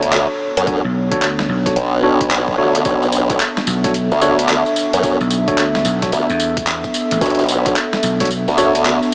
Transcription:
0.00 0.27 D2 loud
0.00 9.14 B3 medium
0.00 9.14 D4 medium
0.00 9.14 A4 medium
0.00 2.84 C#5 medium
0.00 closed hi-hat medium
0.12 clap loud
0.12 closed hi-hat medium
0.57 0.82 F#2 loud
0.57 closed hi-hat medium
0.67 0.81 D4 medium
0.67 0.81 F#4 medium
0.67 0.81 A4 medium
0.67 0.81 C#5 medium
0.67 kick loud
0.67 closed hi-hat medium
0.84 1.09 B1 loud
1.11 1.47 D2 loud
1.11 1.26 D4 loud
1.11 1.26 F#4 medium
1.11 1.26 A4 medium
1.11 1.26 C#5 loud
1.11 kick loud
1.11 closed hi-hat medium
1.22 clap loud
1.22 closed hi-hat medium
1.39 snare medium
1.49 1.75 B1 loud
1.66 1.74 D4 medium
1.66 1.74 F#4 medium
1.66 1.74 A4 medium
1.66 1.74 C#5 medium
1.66 kick loud
1.66 snare soft
1.66 closed hi-hat medium
1.76 2.29 B1 loud
1.76 closed hi-hat medium
2.03 2.24 D4 medium
2.03 2.24 F#4 medium
2.03 2.24 A4 medium
2.03 2.24 C#5 loud
2.21 kick loud
2.21 closed hi-hat medium
2.31 2.56 B1 loud
2.31 clap loud
2.31 closed hi-hat medium
2.48 kick medium
2.58 2.84 D2 medium
2.58 2.72 D4 medium
2.58 2.72 F#4 medium
2.58 2.72 A4 medium
2.58 2.72 C#5 loud
2.75 closed hi-hat medium
2.85 3.38 B1 loud
2.85 3.05 D4 medium
2.85 3.05 F#4 medium
2.85 3.05 A4 medium
2.85 3.05 C#5 loud
2.85 9.14 E5 medium
2.85 kick loud
2.85 closed hi-hat medium
2.85 tambourine soft
3.03 tambourine soft
3.12 tambourine medium
3.30 3.38 D4 medium
3.30 3.38 F#4 medium
3.30 3.38 A4 medium
3.30 3.38 C#5 medium
3.30 kick loud
3.30 closed hi-hat medium
3.30 tambourine soft
3.40 clap loud
3.40 closed hi-hat soft
3.40 tambourine soft
3.57 snare medium
3.57 tambourine soft
3.67 4.09 B1 loud
3.67 tambourine medium
3.84 3.92 D4 loud
3.84 3.92 F#4 medium
3.84 3.92 A4 medium
3.84 3.92 C#5 loud
3.84 kick loud
3.84 snare soft
3.84 closed hi-hat medium
3.84 tambourine soft
3.94 closed hi-hat medium
3.94 tambourine soft
4.11 4.63 D2 loud
4.11 tambourine soft
4.21 4.35 D4 loud
4.21 4.36 F#4 medium
4.21 4.36 A4 medium
4.21 4.36 C#5 loud
4.21 tambourine medium
4.39 closed hi-hat medium
4.39 tambourine soft
4.49 clap loud
4.49 closed hi-hat medium
4.49 tambourine soft
4.66 tambourine soft
4.76 tambourine medium
4.93 5.18 F#2 loud
4.93 closed hi-hat medium
4.93 tambourine soft
5.03 5.17 D4 medium
5.03 5.17 F#4 medium
5.03 5.17 A4 medium
5.03 5.17 C#5 medium
5.03 kick loud
5.03 closed hi-hat medium
5.03 tambourine soft
5.21 5.45 B1 medium
5.21 tambourine soft
5.31 tambourine medium
5.48 5.84 D2 loud
5.48 5.63 D4 loud
5.48 5.63 F#4 medium
5.48 5.63 A4 medium
5.48 5.63 C#5 loud
5.48 kick loud
5.48 closed hi-hat medium
5.48 tambourine soft
5.58 clap loud
5.58 closed hi-hat soft
5.58 tambourine soft
5.75 snare medium
5.75 tambourine soft
5.85 6.11 B1 loud
5.85 tambourine medium
6.02 6.11 D4 medium
6.02 6.11 F#4 medium
6.02 6.11 A4 medium
6.02 6.10 C#5 medium
6.02 kick loud
6.02 snare soft
6.02 closed hi-hat medium
6.02 tambourine soft
6.12 6.27 D2 loud
6.12 closed hi-hat medium
6.12 tambourine soft
6.29 6.81 E2 medium
6.29 tambourine soft
6.40 tambourine medium
6.57 kick loud
6.57 closed hi-hat medium
6.57 tambourine soft
6.67 clap loud
6.67 closed hi-hat medium
6.67 tambourine soft
6.84 kick medium
6.84 tambourine soft
6.94 tambourine medium
7.11 7.20 A1 medium
7.11 closed hi-hat medium
7.11 tambourine soft
7.21 7.74 B1 loud
7.21 7.42 D4 medium
7.21 7.42 F#4 medium
7.21 7.42 A4 medium
7.21 7.42 C#5 loud
7.21 kick loud
7.21 closed hi-hat soft
7.21 tambourine soft
7.26 closed hi-hat soft
7.30 closed hi-hat soft
7.35 closed hi-hat soft
7.39 closed hi-hat soft
7.39 tambourine soft
7.41 closed hi-hat soft
7.44 closed hi-hat soft
7.46 closed hi-hat soft
7.46 tambourine medium
7.66 7.74 D4 medium
7.66 7.74 F#4 medium
7.66 7.74 A4 medium
7.66 7.74 C#5 medium
7.66 kick loud
7.66 closed hi-hat medium
7.66 tambourine soft
7.76 clap loud
7.76 closed hi-hat medium
7.76 tambourine soft
7.93 snare medium
7.93 tambourine soft
8.03 8.45 B1 loud
8.03 tambourine medium
8.20 8.29 D4 medium
8.20 8.29 F#4 medium
8.20 8.29 A4 medium
8.20 8.29 C#5 loud
8.20 kick loud
8.20 snare soft
8.20 closed hi-hat medium
8.20 closed hi-hat soft
8.20 tambourine soft
8.25 closed hi-hat soft
8.27 closed hi-hat soft
8.27 tambourine soft
8.48 9.00 D2 loud
8.48 tambourine soft
8.58 8.72 D4 loud
8.58 8.72 F#4 medium
8.58 8.72 A4 medium
8.58 8.72 C#5 loud
8.58 tambourine medium
8.75 closed hi-hat medium
8.75 tambourine soft
8.85 clap loud
8.85 closed hi-hat medium
8.85 tambourine soft
9.02 tambourine soft

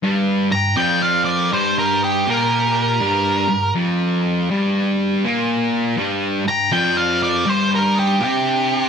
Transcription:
0.03 0.50 G2 medium
0.03 0.50 G3 medium
0.51 0.72 G2 medium
0.51 0.77 G5 medium
0.51 0.76 A#5 medium
0.76 1.50 F2 medium
0.76 1.51 F3 medium
0.76 1.01 D5 medium
0.76 1.01 G5 medium
1.02 1.27 D5 medium
1.02 1.24 F5 medium
1.25 1.51 A#4 medium
1.25 1.50 D5 medium
1.52 2.26 G2 medium
1.52 2.26 G3 medium
1.52 1.76 G4 medium
1.52 1.77 C5 medium
1.78 2.00 G4 medium
1.78 2.02 A#4 medium
2.03 2.25 D#4 medium
2.03 2.27 G4 medium
2.25 3.00 A#2 medium
2.25 3.01 A#3 medium
2.25 3.70 G4 medium
2.30 3.73 A#4 medium
3.00 3.47 G2 medium
3.00 3.48 G3 medium
3.49 3.69 G2 medium
3.75 4.48 F2 medium
3.75 4.49 F3 medium
4.51 5.23 G2 medium
4.51 5.24 G3 medium
5.24 5.97 A#2 medium
5.24 5.98 A#3 medium
5.97 6.44 G2 medium
5.97 6.45 G3 medium
6.46 6.67 G2 medium
6.46 6.72 A#5 medium
6.50 6.72 G5 medium
6.72 7.45 F2 medium
6.72 7.46 F3 medium
6.72 6.96 D5 medium
6.72 6.96 G5 medium
6.97 7.21 D5 medium
6.97 7.21 F5 medium
7.23 7.46 A#4 medium
7.23 7.46 D5 loud
7.46 8.20 G2 medium
7.46 8.20 G3 loud
7.46 7.70 G4 medium
7.46 7.72 C5 medium
7.71 7.94 G4 medium
7.75 7.97 A#4 medium
7.95 8.19 D#4 medium
7.95 8.22 G4 medium
8.19 8.89 C3 medium
8.19 8.89 C4 medium
8.19 8.89 D4 medium
8.24 8.89 G4 medium

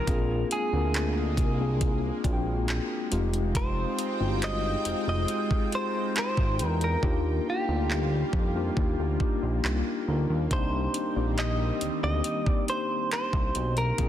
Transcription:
0.00 0.48 A#4 medium
0.07 0.44 A#1 loud
0.07 3.08 G#3 medium
0.07 3.08 A#3 medium
0.07 0.57 A#3 loud
0.07 0.57 C4 medium
0.07 0.58 D4 medium
0.07 0.58 F4 loud
0.07 0.58 G#4 loud
0.07 kick loud
0.07 closed hi-hat medium
0.51 3.08 G#4 medium
0.51 closed hi-hat medium
0.73 1.39 D2 loud
0.73 1.39 A#3 medium
0.73 1.39 C4 medium
0.73 1.40 D4 medium
0.73 1.40 F4 medium
0.73 1.40 A#4 medium
0.94 clap loud
0.94 closed hi-hat medium
1.37 2.11 C2 medium
1.37 kick loud
1.37 closed hi-hat medium
1.59 2.09 A#3 medium
1.59 2.10 C4 medium
1.59 2.10 D4 medium
1.59 2.10 F4 medium
1.59 2.10 G#4 loud
1.81 kick loud
1.81 closed hi-hat medium
2.24 2.80 A#1 loud
2.24 2.91 A#3 medium
2.24 2.92 C4 medium
2.24 2.92 D4 medium
2.24 2.92 F4 medium
2.24 2.32 F#4 medium
2.24 kick medium
2.24 closed hi-hat medium
2.33 2.96 G5 medium
2.68 clap loud
2.68 closed hi-hat medium
3.11 3.86 F1 loud
3.11 3.98 G#3 medium
3.11 6.99 G#3 medium
3.11 6.99 C4 medium
3.11 3.98 C4 medium
3.11 6.99 D#4 medium
3.11 3.99 D#4 medium
3.11 6.99 F4 medium
3.11 3.99 F4 medium
3.11 3.99 G4 loud
3.11 10.47 G5 medium
3.11 closed hi-hat medium
3.34 closed hi-hat soft
3.55 4.44 C5 loud
3.55 kick loud
3.55 closed hi-hat medium
3.99 closed hi-hat medium
4.20 4.76 G1 medium
4.20 4.87 G#3 medium
4.20 4.87 C4 medium
4.20 4.87 D#4 medium
4.20 4.88 F4 medium
4.20 4.28 F#4 medium
4.29 4.91 G4 medium
4.42 5.08 D#5 loud
4.42 clap loud
4.42 closed hi-hat medium
4.85 4.94 F1 soft
4.85 closed hi-hat medium
5.07 5.26 F1 medium
5.07 6.40 G#3 medium
5.07 6.41 C4 medium
5.07 6.41 D#4 medium
5.07 6.41 F4 medium
5.07 6.42 G#4 medium
5.07 5.75 D#5 loud
5.28 closed hi-hat medium
5.51 kick medium
5.72 6.14 C5 loud
5.72 closed hi-hat medium
6.16 6.69 C5 loud
6.16 clap loud
6.16 closed hi-hat medium
6.37 6.62 G#1 medium
6.37 kick medium
6.59 6.97 E2 loud
6.59 closed hi-hat medium
6.69 6.84 A#4 loud
6.81 7.49 A#4 medium
6.81 closed hi-hat soft
7.02 7.40 D#2 loud
7.02 10.47 G3 medium
7.02 13.94 A#3 medium
7.02 7.53 A#3 loud
7.02 7.53 D4 loud
7.02 7.53 D#4 loud
7.02 10.47 F4 medium
7.02 7.54 F4 loud
7.02 7.54 G4 loud
7.02 kick loud
7.50 10.05 G4 medium
7.68 8.24 D2 medium
7.68 8.35 A#3 medium
7.68 8.35 D4 medium
7.68 8.35 D#4 medium
7.68 8.35 F4 medium
7.68 8.36 G4 medium
7.91 clap loud
8.33 8.70 F2 medium
8.33 kick loud
8.55 9.05 A#3 medium
8.55 9.05 D4 medium
8.55 9.06 D#4 medium
8.55 9.06 F4 medium
8.55 9.06 G4 loud
8.77 8.95 D#2 loud
8.77 kick loud
8.99 9.17 D2 medium
9.20 9.87 A#3 medium
9.20 9.87 D4 medium
9.20 9.87 D#4 medium
9.20 9.88 F4 medium
9.20 9.88 G4 medium
9.20 kick medium
9.42 9.61 A#1 loud
9.64 9.83 C2 loud
9.64 clap loud
10.08 10.26 D2 medium
10.08 10.41 A#3 medium
10.08 10.41 D4 medium
10.08 10.41 D#4 medium
10.08 10.42 F4 medium
10.08 10.42 A#4 loud
10.30 10.48 D#2 loud
10.51 10.88 C2 loud
10.51 13.95 D#3 loud
10.51 13.95 G3 medium
10.51 11.01 A#3 loud
10.51 13.95 C4 medium
10.51 11.01 C4 loud
10.51 11.01 D4 loud
10.51 11.02 D#4 medium
10.51 11.02 G4 loud
10.51 11.35 C5 loud
10.51 kick loud
10.51 closed hi-hat medium
10.94 closed hi-hat medium
11.16 11.71 A#1 medium
11.16 11.83 A#3 medium
11.16 11.83 C4 medium
11.16 11.84 D#4 medium
11.16 11.84 G4 medium
11.38 11.99 D#5 loud
11.38 clap loud
11.38 closed hi-hat medium
11.81 11.90 D2 soft
11.81 closed hi-hat medium
12.03 12.22 D2 medium
12.03 13.36 A#3 medium
12.03 13.37 C4 medium
12.03 13.37 D#4 medium
12.03 13.37 G4 medium
12.03 12.47 D#5 loud
12.24 closed hi-hat medium
12.46 12.65 D5 loud
12.46 kick medium
12.68 13.09 C5 medium
12.68 closed hi-hat medium
13.11 13.79 C5 loud
13.11 clap loud
13.11 closed hi-hat medium
13.33 13.52 C2 medium
13.33 kick loud
13.55 13.92 B1 medium
13.55 closed hi-hat medium
13.77 14.09 A#4 loud
13.77 closed hi-hat soft
13.98 14.09 A#1 loud
13.98 14.09 A#3 loud
13.98 14.09 C4 loud
13.98 14.09 D4 medium
13.98 14.09 F4 loud
13.98 14.09 G#4 loud
13.98 kick loud
13.98 closed hi-hat medium

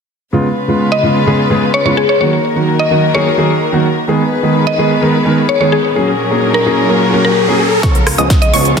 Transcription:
0.33 0.46 C#3 medium
0.33 2.19 C#3 medium
0.33 0.46 G#3 medium
0.33 2.19 G#3 medium
0.33 0.46 B3 medium
0.33 2.19 F4 medium
0.33 0.46 F4 medium
0.33 2.19 B4 medium
0.68 0.88 C#3 medium
0.68 0.88 G#3 medium
0.68 0.89 B3 medium
0.68 0.89 F4 medium
0.92 1.05 D#5 medium
1.03 1.16 C#3 medium
1.03 1.16 G#3 medium
1.03 1.16 B3 medium
1.03 1.16 F4 medium
1.26 1.39 C#3 medium
1.26 1.39 G#3 medium
1.26 1.40 B3 medium
1.26 1.40 G#4 medium
1.50 1.63 C#3 medium
1.50 1.63 G#3 medium
1.50 1.63 B3 medium
1.50 1.63 G#4 medium
1.74 1.81 C#5 medium
1.85 1.98 C#3 medium
1.85 1.98 G#3 medium
1.85 1.98 B3 medium
1.85 1.98 F4 medium
1.85 1.93 C#5 medium
1.97 2.07 G#4 medium
2.09 2.17 C#5 medium
2.20 2.33 D#3 medium
2.20 4.06 D#3 medium
2.20 2.33 F#3 medium
2.20 4.06 A#3 medium
2.20 2.33 A#3 medium
2.20 4.06 F#4 medium
2.20 2.34 F#4 medium
2.20 4.06 A#4 medium
2.20 2.28 C#5 medium
2.55 2.76 D#3 medium
2.55 2.76 F#3 medium
2.55 2.76 A#3 medium
2.55 2.76 F#4 medium
2.79 3.12 D#5 medium
2.90 3.03 D#3 medium
2.90 3.03 F#3 medium
2.90 3.04 A#3 medium
2.90 3.04 F#4 medium
3.14 3.27 D#3 medium
3.14 3.27 F#3 medium
3.14 3.27 A#3 medium
3.14 3.27 G#4 loud
3.14 3.61 C#5 medium
3.37 3.50 D#3 medium
3.37 3.50 F#3 medium
3.37 3.51 A#3 medium
3.37 3.51 G#4 medium
3.72 3.85 D#3 medium
3.72 3.85 F#3 medium
3.72 3.86 A#3 medium
3.72 3.86 F#4 medium
4.08 4.20 D#3 medium
4.08 5.94 D#3 medium
4.08 4.21 G#3 medium
4.08 5.94 B3 medium
4.08 4.21 B3 medium
4.08 7.79 G#4 medium
4.08 4.21 G#4 medium
4.08 5.94 B4 medium
4.08 riser medium
4.43 4.63 D#3 medium
4.43 4.63 G#3 medium
4.43 4.64 B3 medium
4.43 4.64 G#4 medium
4.67 4.80 D#5 medium
4.78 4.91 D#3 medium
4.78 4.91 G#3 medium
4.78 4.91 B3 medium
4.78 4.91 G#4 medium
5.01 5.14 D#3 medium
5.01 5.14 G#3 medium
5.01 5.15 B3 medium
5.01 5.15 A#4 medium
5.25 5.38 D#3 medium
5.25 5.38 G#3 medium
5.25 5.38 B3 medium
5.25 5.38 A#4 medium
5.49 5.56 C#5 medium
5.60 5.73 D#3 medium
5.60 5.73 G#3 medium
5.60 5.73 B3 medium
5.60 5.73 G#4 medium
5.60 5.68 C#5 medium
5.72 5.82 G#4 medium
5.95 7.81 A#2 medium
5.95 6.08 F#3 medium
5.95 7.81 F#3 medium
5.95 6.08 A#3 medium
5.95 7.81 C#4 medium
5.95 6.08 C#4 medium
5.95 6.09 G#4 medium
5.95 7.81 A#4 medium
6.30 6.51 F#3 medium
6.30 6.51 A#3 medium
6.30 6.51 C#4 medium
6.30 6.51 G#4 medium
6.54 7.01 A#4 medium
6.65 6.78 F#3 medium
6.65 6.78 A#3 medium
6.65 6.79 C#4 medium
6.65 6.79 G#4 medium
6.89 7.02 F#3 medium
6.89 7.02 A#3 medium
6.89 7.02 C#4 medium
6.89 7.02 A#4 medium
7.12 7.25 F#3 medium
7.12 7.25 A#3 medium
7.12 7.26 C#4 medium
7.12 7.26 A#4 loud
7.25 7.60 A#4 medium
7.47 7.60 F#3 medium
7.47 7.61 A#3 medium
7.47 7.61 C#4 medium
7.47 7.61 G#4 medium
7.83 8.16 C#2 medium
7.83 7.95 C#3 medium
7.83 8.80 C#3 medium
7.83 8.02 F3 medium
7.83 7.96 G#3 medium
7.83 8.80 G#3 medium
7.83 8.80 B3 medium
7.83 8.02 B3 medium
7.83 7.96 B3 medium
7.83 8.02 C#4 medium
7.83 8.80 F4 medium
7.83 7.96 F4 medium
7.83 8.02 G#4 medium
7.83 8.02 C#5 loud
7.83 8.02 C#6 loud
7.83 kick loud
7.83 snare soft
7.83 closed hi-hat medium
7.83 riser medium
7.95 closed hi-hat soft
8.07 cross-stick medium
8.07 open hi-hat loud
8.18 8.51 C#2 loud
8.18 8.38 C#3 medium
8.18 8.37 F3 medium
8.18 8.38 G#3 medium
8.18 8.37 B3 medium
8.18 8.39 B3 medium
8.18 8.37 C#4 medium
8.18 8.39 F4 medium
8.18 8.37 G#4 medium
8.18 8.37 D#5 medium
8.18 8.37 D#6 medium
8.18 closed hi-hat soft
8.30 kick loud
8.30 snare soft
8.30 closed hi-hat medium
8.42 8.55 D#5 medium
8.42 closed hi-hat soft
8.53 8.75 C#2 loud
8.53 8.66 C#3 medium
8.53 8.74 F3 loud
8.53 8.66 G#3 medium
8.53 8.74 B3 medium
8.53 8.66 B3 medium
8.53 8.74 C#4 medium
8.53 8.66 F4 medium
8.53 8.74 G#4 medium
8.53 8.74 C#5 loud
8.53 8.74 C#6 loud
8.53 open hi-hat loud
8.65 closed hi-hat soft
8.76 8.80 C#2 loud
8.76 8.80 C#3 medium
8.76 8.80 G#3 medium
8.76 8.80 G#4 medium
8.76 8.80 C#6 loud
8.76 kick loud
8.76 snare soft
8.76 closed hi-hat medium

